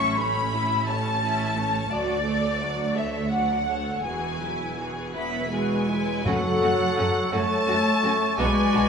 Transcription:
0.00 1.87 A1 medium
0.00 1.87 A2 medium
0.00 0.17 C#4 medium
0.00 0.16 E4 medium
0.00 0.17 E5 medium
0.00 0.19 C#6 medium
0.17 0.54 A3 soft
0.17 0.54 C#4 soft
0.17 0.54 C#5 soft
0.17 0.87 B5 medium
0.54 0.88 C#4 soft
0.54 0.89 E4 soft
0.54 0.89 E5 medium
0.88 1.23 A3 soft
0.88 1.21 C#4 soft
0.88 1.23 C#5 soft
0.88 1.91 A5 medium
0.88 1.89 A5 medium
1.22 1.54 C#4 soft
1.22 1.55 E4 soft
1.22 1.55 E5 soft
1.56 1.91 A3 soft
1.56 1.91 C#4 soft
1.56 1.92 C#5 medium
1.90 4.00 D2 medium
1.90 2.23 F#3 medium
1.90 2.23 F#4 medium
1.90 2.95 D5 medium
1.90 2.23 D5 medium
1.90 2.95 D5 medium
2.26 2.61 A3 soft
2.26 2.61 A4 soft
2.26 2.61 C#5 soft
2.60 2.96 F#3 soft
2.60 2.96 F#4 soft
2.60 2.95 D5 medium
2.95 3.32 A3 soft
2.95 3.32 A4 soft
2.95 3.31 C#5 soft
2.95 3.31 E5 medium
3.30 3.65 F#3 soft
3.30 3.65 F#4 soft
3.30 3.65 D5 soft
3.30 4.02 F#5 medium
3.30 4.04 F#5 medium
3.67 4.05 A3 soft
3.67 4.05 A4 soft
3.67 4.04 C#5 soft
4.02 6.01 E1 medium
4.02 5.13 E2 medium
4.02 4.39 G#4 soft
4.02 4.82 G#5 medium
4.02 5.12 G#5 medium
4.06 4.40 E3 soft
4.06 4.40 F#4 soft
4.42 4.78 F#3 soft
4.42 4.78 E4 soft
4.42 4.78 B4 soft
4.77 5.15 E3 soft
4.77 5.15 F#4 soft
4.77 5.14 G#4 soft
5.14 5.52 F#3 soft
5.14 5.49 B3 medium
5.14 5.51 E4 soft
5.14 5.51 B4 soft
5.14 5.48 E5 medium
5.14 5.49 B5 medium
5.48 6.24 G#3 medium
5.48 5.86 G#4 soft
5.48 6.26 G#5 medium
5.52 5.87 E3 soft
5.52 5.87 F#4 soft
5.52 6.27 B4 medium
5.89 6.26 F#3 soft
5.89 6.26 E4 soft
5.89 6.26 B4 medium
6.22 6.33 F#2 medium
6.22 7.29 F#2 medium
6.22 7.31 F#3 medium
6.22 7.33 F#3 medium
6.22 7.28 A4 medium
6.22 7.33 A4 medium
6.22 7.29 C#5 medium
6.26 6.36 F#3 medium
6.26 6.35 A3 medium
6.26 6.35 C#4 medium
6.26 6.34 F#4 medium
6.26 7.34 F#5 medium
6.61 6.69 F#2 medium
6.61 6.71 F#3 medium
6.61 6.72 A3 medium
6.61 6.70 C#4 medium
6.61 6.70 F#4 medium
6.97 7.05 F#2 medium
6.97 7.07 F#3 soft
6.97 7.07 A3 medium
6.97 7.05 C#4 medium
6.97 7.05 F#4 medium
7.32 7.41 F#2 medium
7.32 7.43 F#3 medium
7.32 8.39 A3 medium
7.32 7.42 A3 soft
7.32 7.40 C#4 medium
7.32 7.40 F#4 medium
7.32 8.39 A4 medium
7.32 8.40 C#5 medium
7.32 8.39 C#5 medium
7.32 8.39 A5 medium
7.68 7.76 F#2 medium
7.68 7.77 F#3 medium
7.68 7.77 A3 medium
7.68 7.76 C#4 medium
7.68 7.76 F#4 medium
8.03 8.11 F#2 medium
8.03 8.12 F#3 medium
8.03 8.12 A3 medium
8.03 8.11 C#4 medium
8.03 8.12 F#4 medium
8.37 8.47 B1 medium
8.37 8.48 F#3 medium
8.37 8.89 G#3 medium
8.37 8.48 B3 medium
8.37 8.48 D4 medium
8.37 8.89 F#4 medium
8.37 8.47 F#4 medium
8.37 8.89 B4 medium
8.37 8.89 D5 medium
8.37 8.89 G#5 medium
8.73 8.82 B1 medium
8.73 8.83 F#3 medium
8.73 8.83 B3 medium
8.73 8.82 D4 medium
8.73 8.81 F#4 medium

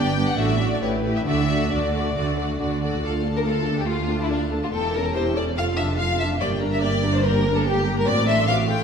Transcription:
0.00 0.34 G1 medium
0.00 0.33 G2 medium
0.00 0.16 B3 medium
0.00 0.17 D4 soft
0.00 0.17 G4 soft
0.00 0.17 D5 medium
0.00 0.28 G5 medium
0.17 0.38 B3 soft
0.17 0.38 D4 soft
0.17 0.39 G4 soft
0.17 0.37 D5 soft
0.29 0.39 F#5 medium
0.38 0.76 A1 medium
0.38 0.76 A2 medium
0.38 0.60 A3 soft
0.38 0.59 D4 soft
0.38 0.58 F#4 soft
0.38 0.58 D5 soft
0.38 0.71 E5 medium
0.59 0.81 A3 soft
0.59 0.82 D4 soft
0.59 0.81 F#4 soft
0.59 0.81 D5 soft
0.72 0.82 D5 medium
0.80 1.21 A1 medium
0.80 1.20 A2 medium
0.80 1.03 A3 soft
0.80 1.03 E4 soft
0.80 1.03 G4 soft
0.80 1.03 B4 soft
0.80 0.91 C#5 medium
1.04 1.24 A3 soft
1.04 1.26 E4 soft
1.04 1.26 G4 soft
1.04 1.26 B4 soft
1.16 1.20 E5 soft
1.25 1.66 D2 soft
1.25 1.66 D3 medium
1.25 1.47 A3 soft
1.25 1.47 D4 soft
1.25 1.47 F#4 soft
1.25 1.47 D5 soft
1.25 1.70 E5 medium
1.48 1.70 A3 soft
1.48 1.70 D4 soft
1.48 1.70 F#4 soft
1.48 1.70 D5 soft
1.70 2.11 D2 soft
1.70 2.11 D3 soft
1.70 1.93 A3 soft
1.70 1.93 D4 soft
1.70 1.93 F#4 soft
1.70 1.93 D5 soft
1.70 2.61 D5 medium
1.94 2.15 A3 soft
1.94 2.15 D4 soft
1.94 2.15 F#4 soft
1.94 2.15 D5 soft
2.15 2.55 D2 soft
2.15 2.55 D3 medium
2.15 2.37 A3 soft
2.15 2.37 D4 soft
2.15 2.37 F#4 soft
2.15 2.37 D5 soft
2.38 2.58 A3 soft
2.38 2.58 D4 soft
2.38 2.58 F#4 soft
2.38 2.58 D5 soft
2.59 2.99 D2 soft
2.59 2.98 D3 soft
2.59 2.81 A3 soft
2.59 2.81 D4 soft
2.59 2.81 F#4 soft
2.59 2.81 D5 soft
2.82 3.02 A3 soft
2.82 3.04 D4 soft
2.82 3.04 F#4 soft
2.82 3.04 D5 soft
3.03 4.69 D2 soft
3.03 3.23 A3 soft
3.03 3.23 F4 soft
3.03 3.12 A4 medium
3.03 3.25 F5 soft
3.25 3.46 D4 soft
3.25 3.46 A4 soft
3.25 3.46 A5 soft
3.37 3.41 A#4 medium
3.46 3.67 A3 soft
3.46 3.67 F4 soft
3.46 3.77 A4 medium
3.46 3.67 F5 soft
3.67 3.89 D4 soft
3.67 3.89 A4 soft
3.67 3.89 A5 soft
3.79 3.89 G4 medium
3.88 4.08 A3 soft
3.88 4.08 F4 soft
3.88 4.21 F4 medium
3.88 4.08 F5 soft
4.09 4.30 D4 soft
4.09 4.31 A4 soft
4.09 4.30 A5 soft
4.22 4.32 E4 medium
4.31 4.52 A3 soft
4.31 4.39 D4 medium
4.31 4.52 F4 soft
4.31 4.52 F5 soft
4.51 4.73 D4 soft
4.51 4.73 A4 soft
4.51 4.73 A5 soft
4.63 4.67 F4 medium
4.72 5.55 E1 soft
4.72 5.55 E2 soft
4.72 4.93 E4 soft
4.72 4.93 G4 soft
4.72 4.94 A4 medium
4.72 4.93 G5 soft
4.93 5.15 C#4 soft
4.93 5.15 A4 soft
4.93 5.15 A#4 medium
4.93 5.15 A5 soft
5.15 5.36 E4 soft
5.15 5.36 G4 soft
5.15 5.23 C5 medium
5.15 5.36 G5 soft
5.34 5.57 C#4 soft
5.34 5.56 A4 soft
5.34 5.44 D5 medium
5.34 5.56 A5 soft
5.56 6.40 F1 soft
5.56 6.40 F2 soft
5.56 5.76 F4 soft
5.56 5.77 A4 soft
5.56 5.76 F5 soft
5.56 5.65 F5 medium
5.77 5.98 D4 soft
5.77 5.97 F4 soft
5.77 5.85 E5 medium
5.77 5.98 A5 soft
5.98 6.18 F4 soft
5.98 6.19 A4 soft
5.98 6.19 F5 soft
5.98 6.18 F5 medium
6.18 6.40 D4 soft
6.18 6.40 F4 soft
6.18 6.27 E5 medium
6.18 6.40 A5 soft
6.39 8.08 G1 medium
6.39 8.07 G2 medium
6.39 6.60 A#3 soft
6.39 6.60 G4 soft
6.39 6.48 D5 medium
6.39 6.59 G5 soft
6.61 6.82 D4 soft
6.61 6.82 A#4 soft
6.61 6.82 A#5 soft
6.72 6.82 E5 medium
6.82 7.04 A#3 soft
6.82 7.03 G4 soft
6.82 7.13 D5 medium
6.82 7.03 G5 soft
7.04 7.25 D4 soft
7.04 7.25 A#4 soft
7.04 7.25 A#5 soft
7.14 7.25 C5 medium
7.24 7.44 A#3 soft
7.24 7.44 G4 soft
7.24 7.56 A#4 medium
7.24 7.44 G5 soft
7.45 7.67 D4 soft
7.45 7.66 A#4 soft
7.45 7.66 A#5 soft
7.56 7.66 A4 medium
7.66 7.87 A#3 soft
7.66 7.96 G4 medium
7.66 7.87 G4 soft
7.66 7.86 G5 soft
7.88 8.08 D4 soft
7.88 8.08 A#4 soft
7.88 8.08 A#5 soft
7.97 8.07 A#4 medium
8.06 8.84 A1 medium
8.06 8.84 A2 medium
8.06 8.27 C4 soft
8.06 8.27 F#4 soft
8.06 8.28 D5 medium
8.06 8.26 D6 soft
8.27 8.48 D4 soft
8.27 8.48 A4 soft
8.27 8.48 E5 medium
8.27 8.49 C6 soft
8.47 8.69 C4 soft
8.47 8.69 F#4 soft
8.47 8.55 F5 medium
8.47 8.70 D6 soft
8.69 8.84 D4 soft
8.69 8.84 A4 soft
8.69 8.84 G5 medium
8.69 8.84 C6 soft

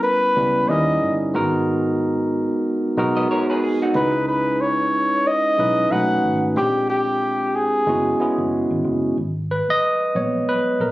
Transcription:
0.00 0.36 G3 medium
0.00 0.37 B3 medium
0.00 0.37 C#4 medium
0.00 0.38 E4 medium
0.00 0.69 A#4 medium
0.00 0.70 B4 loud
0.36 0.64 C#2 medium
0.36 0.68 G3 medium
0.36 0.69 B3 medium
0.36 0.68 C#4 medium
0.36 0.69 E4 medium
0.36 0.70 B4 medium
0.69 0.96 D#2 medium
0.69 1.30 G3 medium
0.69 1.30 C#4 medium
0.69 1.30 D#4 medium
0.69 1.31 E4 medium
0.69 1.31 A#4 medium
0.69 1.20 D#5 loud
1.02 1.35 G1 medium
1.34 2.47 G#1 medium
1.34 2.56 G#3 loud
1.34 2.57 B3 medium
1.34 2.57 D#4 medium
1.34 2.57 F#4 medium
1.34 2.57 A#4 loud
2.97 3.24 B1 medium
2.97 3.89 G#3 medium
2.97 3.89 B3 medium
2.97 3.89 D#4 medium
2.97 3.89 F#4 medium
2.97 3.90 A#4 medium
3.17 3.29 B4 medium
3.17 3.29 D#5 medium
3.31 3.48 A#4 medium
3.31 3.48 C#5 medium
3.50 3.62 G#4 medium
3.50 3.62 B4 medium
3.64 3.81 G#4 medium
3.82 4.13 D#4 medium
3.82 4.12 F#4 medium
3.95 5.07 C#2 loud
3.95 5.17 G#3 medium
3.95 5.17 C#4 medium
3.95 5.18 D#4 medium
3.95 5.18 E4 medium
3.95 4.25 B4 medium
3.95 5.18 B4 medium
4.29 4.63 B4 medium
4.61 5.29 C#5 medium
5.27 5.93 D#5 loud
5.58 5.86 B1 medium
5.58 5.90 G#3 medium
5.58 5.90 C#4 medium
5.58 5.90 D#4 medium
5.58 5.91 E4 medium
5.58 5.91 B4 medium
5.91 6.18 B1 medium
5.91 6.51 A3 medium
5.91 6.52 C#4 medium
5.91 6.52 D#4 medium
5.91 6.52 F#4 medium
5.91 6.52 B4 medium
5.91 6.42 F#5 loud
6.24 6.57 G#1 medium
6.56 7.68 A#1 loud
6.56 7.78 G#3 medium
6.56 7.78 C4 medium
6.56 7.79 D4 medium
6.56 7.79 F4 medium
6.56 6.87 G4 medium
6.56 7.79 G4 medium
6.90 7.57 G4 medium
7.55 8.52 G#4 medium
7.87 8.14 F#1 medium
7.87 8.17 G#3 medium
7.87 8.17 B3 medium
7.87 8.17 C#4 medium
7.87 8.18 E4 medium
7.87 8.18 F#4 medium
8.19 9.11 G#3 medium
8.19 9.11 B3 medium
8.19 9.11 C#4 medium
8.19 9.12 E4 medium
8.19 9.12 G#4 medium
8.19 muted fingered electric bass stroke soft
8.38 8.65 F#1 medium
8.70 8.82 G#1 medium
8.84 9.11 F#1 medium
9.17 9.60 G#1 medium
9.51 9.69 B4 medium
9.69 10.12 D#5 loud
9.69 muted fingered electric bass stroke soft
10.15 10.42 A#1 medium
10.15 10.91 F#3 soft
10.15 10.91 G#3 soft
10.15 10.91 B3 medium
10.15 10.48 C#5 medium
10.49 10.81 B4 medium
10.80 10.91 A#1 medium
10.80 10.91 A#4 medium

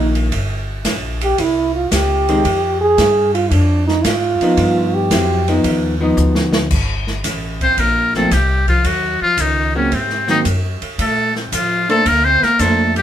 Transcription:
0.00 0.30 A#1 medium
0.00 0.28 D#3 medium
0.00 0.29 A#3 medium
0.00 0.11 D#4 loud
0.15 ride soft
0.32 0.83 G1 medium
0.32 kick soft
0.32 ride medium
0.85 1.36 A#1 medium
0.85 kick soft
0.85 snare medium
0.85 hi-hat pedal medium
0.85 ride medium
1.21 1.41 G4 loud
1.21 ride soft
1.38 1.90 C2 medium
1.38 1.75 E4 medium
1.38 kick soft
1.38 ride medium
1.75 1.93 F4 medium
1.91 2.43 C#2 medium
1.91 2.80 G4 medium
1.91 kick soft
1.91 snare medium
1.91 hi-hat pedal medium
1.91 ride medium
2.29 2.43 D#3 medium
2.29 2.44 G#3 medium
2.29 2.44 C4 medium
2.29 ride soft
2.45 2.96 F2 medium
2.45 kick soft
2.45 ride medium
2.81 3.34 G#4 loud
2.98 3.49 G2 loud
2.98 kick soft
2.98 snare medium
2.98 hi-hat pedal medium
2.98 ride medium
3.34 3.53 F4 loud
3.34 ride soft
3.51 4.03 F2 medium
3.51 3.87 D4 medium
3.51 kick soft
3.51 ride medium
3.87 4.05 D#4 medium
3.87 snare soft
4.04 4.38 G#2 loud
4.04 4.95 F4 loud
4.04 kick soft
4.04 snare medium
4.04 hi-hat pedal medium
4.04 ride medium
4.40 5.08 F3 medium
4.40 5.08 B3 medium
4.40 5.09 D#4 medium
4.40 muted upright bass stroke soft
4.40 ride soft
4.57 5.09 G2 medium
4.57 kick soft
4.57 ride medium
4.94 5.64 G4 loud
5.10 5.62 F2 medium
5.10 5.44 F#3 medium
5.10 5.44 C4 medium
5.10 5.45 E4 medium
5.10 kick soft
5.10 snare medium
5.10 hi-hat pedal medium
5.10 ride medium
5.48 5.94 F3 medium
5.48 5.94 B3 medium
5.48 5.94 D#4 medium
5.48 ride soft
5.64 6.16 D#2 medium
5.64 kick soft
5.64 ride medium
6.00 6.67 F3 medium
6.00 6.68 B3 medium
6.00 6.68 D#4 medium
6.17 6.69 D2 loud
6.17 hi-hat pedal medium
6.35 snare medium
6.53 snare medium
6.70 7.22 G1 medium
6.70 kick medium
6.70 crash medium
7.07 snare soft
7.24 7.76 A1 medium
7.24 kick soft
7.24 snare soft
7.24 hi-hat pedal soft
7.24 ride medium
7.61 7.81 C4 medium
7.61 7.81 C5 medium
7.61 kick soft
7.61 ride soft
7.77 8.29 A#1 medium
7.77 8.14 A#3 medium
7.77 8.15 A#4 medium
7.77 kick soft
7.77 ride medium
8.14 8.30 F3 medium
8.14 8.34 A3 medium
8.14 8.30 A#3 medium
8.14 8.30 C4 medium
8.14 8.34 A4 medium
8.14 snare soft
8.31 8.83 C2 medium
8.31 8.68 G3 medium
8.31 8.68 G4 medium
8.31 kick soft
8.31 snare soft
8.31 hi-hat pedal medium
8.31 ride medium
8.68 8.87 F3 medium
8.68 8.88 F4 medium
8.68 kick medium
8.68 ride soft
8.84 9.18 D#2 medium
8.84 9.21 F#3 medium
8.84 9.21 F#4 medium
8.84 kick soft
8.84 ride medium
9.21 9.41 F3 medium
9.21 9.43 F4 medium
9.21 muted upright bass stroke soft
9.37 9.89 C#2 medium
9.37 9.75 D#3 medium
9.37 9.76 D#4 medium
9.37 kick soft
9.37 hi-hat pedal medium
9.37 ride medium
9.75 9.94 C#3 medium
9.75 9.90 F#3 medium
9.75 9.90 A#3 medium
9.75 9.90 C4 medium
9.75 9.96 C#4 medium
9.91 10.43 G#2 medium
9.91 10.28 C3 medium
9.91 10.30 C4 medium
9.91 kick soft
9.91 ride medium
10.10 snare soft
10.28 10.44 D#3 medium
10.28 10.43 F#3 medium
10.28 10.44 A#3 medium
10.28 10.44 C4 medium
10.28 10.40 D#4 medium
10.28 snare soft
10.45 10.79 F#2 medium
10.45 kick soft
10.45 hi-hat pedal medium
10.45 ride medium
10.82 muted upright bass stroke soft
10.82 ride soft
10.98 11.50 A#2 medium
10.98 11.33 A3 medium
10.98 11.34 A4 medium
10.98 kick soft
10.98 ride medium
11.36 11.52 C3 soft
11.36 11.53 C4 soft
11.36 snare soft
11.52 12.04 A2 medium
11.52 11.88 F3 medium
11.52 11.89 F4 medium
11.52 kick soft
11.52 hi-hat pedal medium
11.52 ride medium
11.89 12.09 A3 medium
11.89 12.04 A#3 medium
11.89 12.04 D4 medium
11.89 12.04 A4 medium
11.89 12.09 A4 medium
11.89 12.04 C5 medium
11.89 ride soft
12.06 12.40 D2 medium
12.06 12.27 A#3 medium
12.06 12.26 A#4 medium
12.06 kick soft
12.06 ride medium
12.25 12.44 C4 medium
12.25 12.45 C5 medium
12.42 12.62 A#3 medium
12.42 12.62 A#4 medium
12.42 muted upright bass stroke soft
12.42 snare soft
12.59 13.02 F2 medium
12.59 12.97 A3 medium
12.59 12.92 A#3 soft
12.59 12.93 D4 medium
12.59 12.96 A4 medium
12.59 12.93 A4 medium
12.59 12.93 C5 medium
12.59 kick soft
12.59 hi-hat pedal medium
12.59 ride medium
12.96 13.02 G3 medium
12.96 13.02 G4 medium
12.96 ride soft

